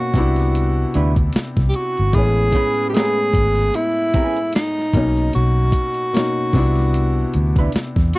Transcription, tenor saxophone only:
Already playing: F#4
1.69 G4
1.75 F#4
2.15 G#4
2.89 G4
2.95 G#4
3.75 E4
4.55 D#4
5.35 F#4
8.15 F#4

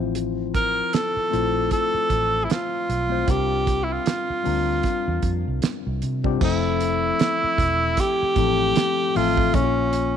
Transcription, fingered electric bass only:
Already playing: A1
1.17 muted fingered electric bass stroke
1.34 A#1
1.94 muted fingered electric bass stroke
2.11 A1
2.89 B1
3.28 C2
4.30 muted fingered electric bass stroke
4.46 D2
5.08 E2
5.23 F2
5.48 C2
5.87 C2
6.03 C3
6.42 F1
7.44 muted fingered electric bass stroke
7.59 E1
8.23 muted fingered electric bass stroke
8.37 A1
9.16 A1
9.55 A#1

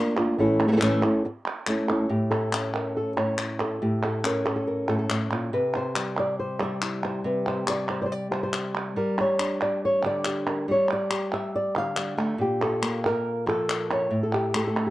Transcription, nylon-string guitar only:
Already playing: A#3 D4 F4 A#4
0.17 A#3 D4 F4 A#4
0.38 A2 E3 A3 C#4 E4 A4
0.68 E3 A3 C#4 E4 A4
0.72 E3 A3 C#4 E4 A4
0.76 E3 A3 C#4 E4 A4
0.81 A2 E3 A3 C#4 E4 A4
1.03 A3 C#4 E4 A4
1.25 muted nylon-string guitar stroke
1.67 A3 C#4 E4 A4
1.89 A3 C#4 E4 A4
2.09 A2 G4
2.31 A4
2.52 C#4
2.74 A#4
2.97 A4
3.17 A2 C#5
3.61 A4
3.82 A2 G4
4.05 A4
4.24 C#4 A#4
4.46 A4
4.56 A4
4.67 A#4
4.89 A2 A4
4.98 A4
5.10 A2
5.31 A#2
5.53 C3 B4
5.76 C5
5.95 G3
6.19 D5
6.39 C5
6.59 G3 E5
6.82 E4
7.05 C5
7.24 C3 B4
7.47 C5
7.67 G3 D5
7.90 C5
8.02 C5 D5
8.06 C5
8.12 D5
8.31 G3 C5
8.43 C5
8.96 G3 A#4
9.20 C#5
9.39 D4
9.62 D5
9.85 C#5
10.03 D3 D5
10.26 G4
10.46 A#4
10.68 G3 C#5
10.93 D5
11.11 G4
11.33 E5
11.55 D5
11.75 D3 F5
11.97 G3
12.17 A3
12.38 A#2 G4
12.63 A4
12.82 A#3
13.06 A#4
13.46 F3 A4
13.92 C#5
14.11 A2
14.23 A4
14.34 G4
14.54 A3 A4
14.67 A4
14.87 G4

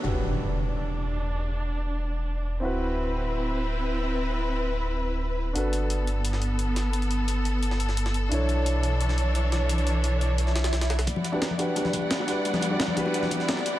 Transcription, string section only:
0.04 D4
2.63 C4 E4 B4
5.56 B3 A4
8.32 E3 D4 C#5
11.07 G3 E4 D5 F#5
13.66 C4 B4

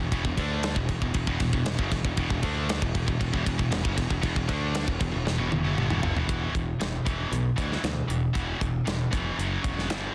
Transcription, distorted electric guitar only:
0.00 E2 B2
0.12 E2 B2
0.24 E2 B2
0.37 D3 A3 D4
0.77 E2 B2
0.89 E2 B2
1.02 E2 B2
1.15 E2 B2
1.27 E2 B2
1.41 E2 B2
1.53 E2 B2
1.66 E2 B2
1.79 F#2 C#3
1.92 E2 B2
2.05 E2 B2
2.17 E2 B2
2.30 E2 B2
2.43 D3 A3 D4
2.82 E2 B2
2.95 E2 B2
3.07 E2 B2
3.20 E2 B2
3.33 E2 B2
3.45 E2 B2
3.58 E2 B2
3.71 E2 B2
3.83 F#2 C#3
3.96 E2 B2
4.09 E2 B2
4.21 E2 B2
4.35 E2 B2
4.47 D3 A3 D4
4.87 E2 B2
4.99 E2 B2
5.12 E2 B2
5.25 E2 B2
5.38 E2 B2
5.51 E2 B2
5.64 F#2 C#3
5.77 G2 D3
5.89 E2 B2
6.02 G2 D3
6.16 E2 B2
6.28 E2 B2 E3
6.54 E2 B2
6.80 E2 B2
7.05 E2 B2 E3
7.31 E2 B2
7.56 E2 B2 E3
7.82 E2 B2
8.08 E2 B2
8.34 E2 B2 E3
8.61 E2 B2
8.86 E2 B2
9.11 E2 B2 E3
9.37 F#2 C#3 F#3
9.63 F#2 C#3 F#3
9.89 G2 D3 G3

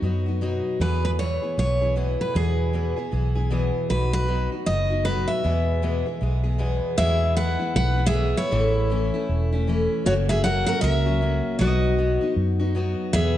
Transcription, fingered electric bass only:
0.02 F#2
0.80 E2
1.58 B1
2.35 E2
3.13 B1
3.90 B1
4.67 F#1
5.45 E2
6.22 B1
6.98 E2
7.75 B1
8.52 A1
9.29 E1
10.06 F#1
10.83 C#2
11.60 B1
12.36 F#2
13.14 E2

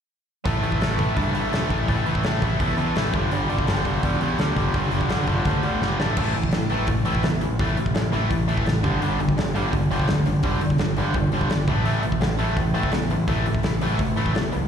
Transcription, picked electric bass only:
0.46 A1
0.62 A1
0.81 A1
0.99 A1
1.17 G2
1.53 E1
1.70 A1
1.89 A1
2.06 A1
2.25 A1
2.42 A1
2.61 E2
2.77 E2
2.96 A1
3.14 G1
3.32 G1
3.49 G1
3.67 G1
3.86 G1
4.04 E2
4.39 D2
4.57 G1
4.74 G1
4.93 G1
5.11 G1
5.28 G1
5.46 D2
5.63 D2
5.81 G1
5.99 A1
6.17 A1
6.35 A1
6.53 A1
6.71 A1
6.88 A1
7.07 A1
7.23 E2
7.42 A1
7.60 A1
7.78 A1
7.96 A1
8.13 A1
8.31 A1
8.49 A1
8.66 A1
8.84 G1
9.02 G1
9.20 G1
9.37 G1
9.55 G1
9.74 G1
9.90 G1
10.08 D2
10.26 G1
10.44 G1
10.61 G1
10.79 G1
10.97 G1
11.15 G1
11.32 G1
11.50 G1
11.68 A1
11.85 A1
12.03 A1
12.21 A1
12.39 A1
12.57 A1
12.73 A1
12.92 E2
13.10 A1
13.28 A1
13.45 A1
13.63 A1
13.82 A1
14.00 A1
14.17 A1
14.34 E2
14.53 C#2

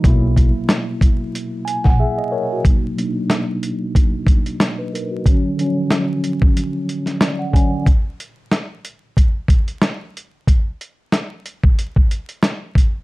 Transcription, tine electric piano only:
0.02 B2 F#3 A#3 E4
1.65 G#5
1.84 F#5
2.00 G#4 E5
2.18 D#5
2.32 A#4 C#5
2.53 F#4
2.63 B2 F#3 A#3 D#4
2.95 B2 F#3 A#3
2.99 D4
3.05 D#4
4.60 D#5
4.78 B4
4.93 A#4
5.11 F#4
5.25 D3 F#3 C#4
5.57 D3 F3 C#4
5.65 F#3
7.21 D5
7.39 F#5
7.51 D3 F#3 C#4 G#5

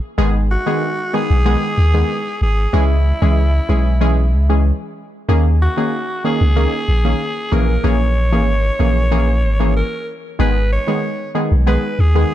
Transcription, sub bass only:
0.18 G#1
1.30 B1
1.78 D#2
2.41 G#1
2.73 C#2
3.22 C#2
3.69 B1
4.33 C#2
5.29 D#2
6.41 C#2
6.88 A#1
7.52 A#1
7.84 A#1
8.33 G#1
8.80 A#1
9.44 G#1
10.39 G#1
11.52 B1
11.99 D#2

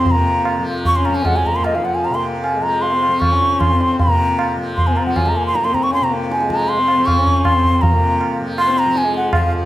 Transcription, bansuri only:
0.06 C6
0.11 A#5
0.86 C#6
0.96 C6
1.05 A#5
1.15 G#5
1.26 F#5
1.36 G#5
1.46 A#5
1.56 C6
1.65 D#5
1.75 F5
1.85 F#5
1.95 G#5
2.05 A#5
2.14 C6
2.44 G#5
2.63 A#5
2.81 C6
3.20 C#6
3.60 C6
4.00 A#5
4.77 C6
4.87 G#5
4.96 A#5
5.06 F#5
5.16 G#5
5.26 A#5
5.36 G#5
5.46 C6
5.55 A#5
5.64 C6
5.75 A#5
5.83 C#6
5.94 C6
6.04 A#5
6.32 G#5
6.50 A#5
6.69 C6
7.06 C#6
7.45 C6
7.82 A#5
8.59 C6
8.79 A#5
8.97 G#5
9.17 F#5
9.34 F5

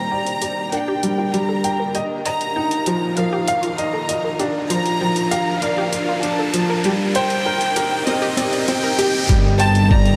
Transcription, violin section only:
Already playing: A#5
0.72 G5
1.34 A#5
2.26 A#5
3.19 F5
3.80 A#5
4.69 A#5
5.62 F5
6.23 A5
7.15 G5
8.07 D#5
8.69 G5
9.60 A5
9.91 A#5

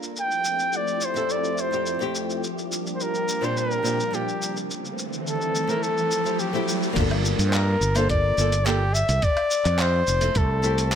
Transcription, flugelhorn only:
0.21 G5
0.76 D5
1.05 C5
1.31 D5
1.60 C5
2.95 C5
3.02 A#4
3.44 C5
3.58 A#4
4.15 G4
5.29 A4
5.70 A#4
5.83 A4
6.40 G4
7.48 C5
7.54 A#4
7.97 C5
8.10 D5
8.65 G4
8.94 E5
9.24 D5
9.81 C5
10.37 A4

